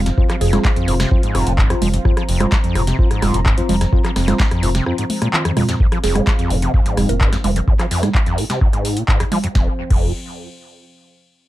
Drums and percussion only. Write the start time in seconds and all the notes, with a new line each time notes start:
0.06 snare, closed hi-hat
0.18 kick
0.30 cross-stick, clap, closed hi-hat
0.41 open hi-hat
0.53 cross-stick, snare, closed hi-hat, low conga
0.65 kick, cross-stick, snare, clap
0.76 closed hi-hat
0.88 open hi-hat
1.00 cross-stick, snare, closed hi-hat
1.11 kick
1.23 closed hi-hat
1.35 cross-stick, open hi-hat
1.47 closed hi-hat
1.58 kick, clap
1.70 cross-stick, closed hi-hat
1.82 open hi-hat, low conga
1.94 closed hi-hat
2.05 kick, cross-stick
2.17 cross-stick, closed hi-hat
2.29 open hi-hat
2.40 cross-stick, closed hi-hat, low conga
2.52 kick, snare, clap
2.64 closed hi-hat
2.75 cross-stick, open hi-hat
2.87 snare, closed hi-hat
2.99 kick
3.11 cross-stick, closed hi-hat
3.22 cross-stick, open hi-hat, low conga
3.34 closed hi-hat
3.46 kick, cross-stick, clap
3.58 closed hi-hat
3.69 open hi-hat, low conga
3.81 cross-stick, snare, closed hi-hat
3.93 kick
4.05 cross-stick, clap, closed hi-hat
4.16 cross-stick, snare, open hi-hat
4.28 cross-stick, snare, closed hi-hat, low conga
4.40 kick, snare, clap
4.51 cross-stick, closed hi-hat
4.63 open hi-hat
4.75 snare, closed hi-hat
4.86 cross-stick
4.98 closed hi-hat
5.10 open hi-hat, high tom
5.22 cross-stick, closed hi-hat, high tom
5.33 clap, mid tom
5.45 cross-stick, closed hi-hat, mid tom
5.57 cross-stick, mid tom, open hi-hat, low conga
5.69 snare, closed hi-hat
5.80 kick
5.92 cross-stick, closed hi-hat
6.04 snare, open hi-hat
6.15 cross-stick, closed hi-hat, low conga
6.27 kick, snare, clap
6.39 closed hi-hat
6.50 open hi-hat
6.62 closed hi-hat
6.74 kick
6.86 closed hi-hat
6.97 cross-stick, open hi-hat, low conga
7.09 closed hi-hat
7.21 kick, clap
7.33 snare, closed hi-hat
7.44 open hi-hat, low conga
7.56 closed hi-hat
7.68 kick
7.79 cross-stick, clap, closed hi-hat
7.91 open hi-hat
8.03 cross-stick, snare, closed hi-hat, low conga
8.15 kick, clap
8.26 closed hi-hat
8.38 open hi-hat
8.50 snare, closed hi-hat
8.61 kick
8.73 closed hi-hat
8.85 open hi-hat
8.97 closed hi-hat
9.08 kick, clap
9.20 cross-stick, closed hi-hat
9.32 open hi-hat, low conga
9.44 closed hi-hat
9.55 kick, snare
9.90 kick, crash